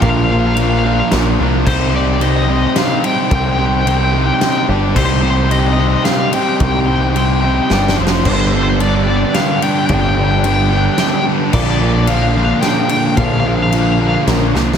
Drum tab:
CC |------------------|x-----------------|------------------|x-----------------|
RD |x-----x-----x-----|------x-----x--x--|x-----x-----x-----|------x-----x--x--|
SD |------------o-----|------------o-----|------------o-----|------------o-----|
BD |o-----------------|o-----------------|o-----------------|o-----------------|

CC |------------------|x-----------------|------------------|x-----------------|
RD |x-----x-----------|------x-----x--x--|x-----x-----x-----|------x-----x--x--|
SD |------------o-o-o-|------------o-----|------------o-----|------------o-----|
BD |o-----------------|o-----------------|o-----------------|o-----------------|

CC |------------------|
RD |x-----x-----x-----|
SD |------------o--o-o|
BD |o-----------------|